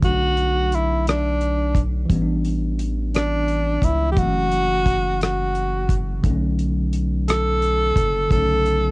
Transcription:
Already playing: C#5
0.00 B1 D3 F#3, kick, closed hi-hat
0.05 A3 D4 F#4
0.37 closed hi-hat
0.72 E4, closed hi-hat
1.07 D4, cross-stick, closed hi-hat
1.41 closed hi-hat
1.75 kick, closed hi-hat
2.05 E3 G3
2.10 A1 B3, kick, closed hi-hat
2.16 C#4
2.22 D4
2.45 closed hi-hat
2.79 closed hi-hat
3.14 D4, cross-stick, closed hi-hat
3.48 closed hi-hat
3.82 C#2 E4, kick, closed hi-hat
4.12 E3 F#3 G4
4.17 F#1 A3 F#4, kick, closed hi-hat
4.23 C4
4.29 C#4
4.52 closed hi-hat
4.86 kick, closed hi-hat
5.21 F#4, cross-stick, closed hi-hat
5.55 closed hi-hat
5.89 kick, closed hi-hat
6.20 C#3 F#3
6.24 B1 D3 A3, kick, closed hi-hat
6.30 C#4
6.59 closed hi-hat
6.93 closed hi-hat
7.28 A4, cross-stick, closed hi-hat
7.62 closed hi-hat
7.96 F#1, kick, closed hi-hat
8.26 C#3 D3
8.31 B1 A3 A4, kick, closed hi-hat
8.36 C#4
8.66 closed hi-hat

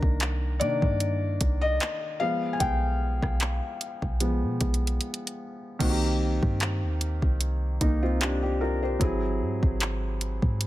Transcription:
Already playing: D#3 A#3 D4 A#4
0.03 C2, kick
0.20 clap, closed hi-hat
0.60 C3 D#3 A#3 D4 D5, closed hi-hat
0.82 G2, kick
1.00 closed hi-hat
1.41 C2, kick, closed hi-hat
1.61 D#5
1.80 clap, closed hi-hat
2.20 F3 G#3 B3 F5
2.53 G#5
2.60 B1 G5, kick, closed hi-hat
3.22 B1, kick, cross-stick
3.40 clap, closed hi-hat
3.81 closed hi-hat
4.02 B1, kick
4.20 F3 G#3 B3, closed hi-hat
4.43 B2
4.61 B1, kick, closed hi-hat
4.74 closed hi-hat
4.87 closed hi-hat
5.01 closed hi-hat
5.14 closed hi-hat
5.27 closed hi-hat
5.79 C2 D#3 A#3 C4 F#4, kick, closed hi-hat, crash
5.89 G4
6.43 G2, kick
6.60 clap, closed hi-hat
6.83 D#2
7.01 closed hi-hat
7.22 C2, kick
7.41 closed hi-hat
7.81 C2 A#3 D#4, kick, closed hi-hat
8.03 C4 F4
8.21 D4 G4, clap, closed hi-hat
8.42 D4 G4
8.61 F4 A#4
8.83 G4 C5
8.99 G#1 F#3 C4 E4 G#4, kick, closed hi-hat
9.41 G#2
9.63 G#1, kick
9.80 clap, closed hi-hat
10.21 closed hi-hat
10.42 G#2, kick
10.61 closed hi-hat

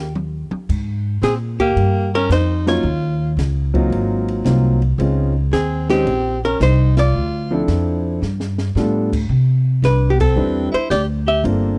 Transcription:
Already playing: D#2 G4
0.15 mid tom
0.50 muted upright bass stroke, mid tom
0.69 G#2, kick, crash
1.22 A#2 C4 G#4, snare, hi-hat pedal, ride
1.59 A#3 G4, kick, ride
1.76 G2, ride
2.15 C#4 A#4
2.29 F2 D#4 C5, snare, hi-hat pedal, ride
2.67 F#3 A#3 C#4 D#4 F4 C#5, snare, ride
2.83 D#2
3.37 C#2, snare, hi-hat pedal, ride
3.74 F#3 A#3 C4 D#4 F4, kick, ride
3.90 G#1, ride
4.28 ride
4.44 C2 F#3 A#3 C4 D#4 F4, snare, hi-hat pedal, ride
4.82 ride
4.98 C#2 G#3 C4 C#4 D#4 F4, ride
5.51 D#2 C4 G#4, snare, hi-hat pedal, ride
5.89 G#3 C4 C#4 D#4 G4 G#4, snare, ride
6.05 A#1, ride
6.45 C#4 A#4
6.60 C2 D#4 C5, snare, hi-hat pedal, ride
6.97 F4 D5, snare, ride
7.13 D2
7.51 F3 C4 D4 E4 A4
7.68 F2, snare, hi-hat pedal, ride
8.22 G2, snare
8.40 snare
8.58 snare
8.75 A2 G3 B3 D4 F4 A4, snare, hi-hat pedal
9.13 kick, crash
9.29 C3
9.82 C2 D4 B4, snare, hi-hat pedal, ride
10.10 B3 G4
10.20 C4 A4, kick, crash
10.36 E2 G3 C4 D4 E4 B4
10.72 E4 C5, muted upright bass stroke, ride
10.90 D2 G4 D5, snare, hi-hat pedal, ride
11.27 G4 E5
11.44 G1 A#3 C4 D4 F4 A4, ride

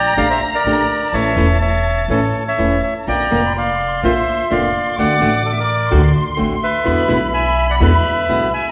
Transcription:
Already playing: A#1 D5 G5 A#5
0.17 A#1 D3 A3 D4 G4 D5 F5
0.30 C5 E5
0.54 A#4 D5
0.64 A#1 D3 A3 D4 G4
1.12 A1 E3 A3 C#4 E4 C#5 E5 A5
1.36 E1 E3 A3 C#4 E4
1.61 C#5 E5
2.08 A1 E3 A3 C#4 E4 A4 C#5
2.47 C#5 E5
2.57 E1 E3 A3 C#4 E4
2.83 C#5 E5
2.99 A5
3.05 A#1 D3 A#3 C4 F4 D5 G5 A#5
3.31 F1 D3 A#3 C4 F4
3.46 B5
3.54 D5 C6
3.58 F5
4.03 A#1 D3 A#3 C4 F4 C5 E5
4.50 F1 D3 A#3 C4 F4 D5 F5
4.97 D2 D3 A3 C4 F#4 D5 F#5 D6
5.20 A1 D3 A3 C4 F#4
5.45 A4 D5
5.52 E5
5.60 A#4 D5
5.91 D2 D3 A3 C4 F#4 C6
6.37 A1 D3 A3 C4 F#4
6.63 B4 E5
6.84 E2 B2 D3 G#3 B3 E4 B5
7.08 B1 B2 D3 G#3 B3 E4
7.34 E5 G#5
7.70 D5 F#5
7.80 E2 B2 D3 G#3 B3 E4 B4 E5
8.29 B1 B2 D3 G#3 B3 E4
8.54 E5 G#5

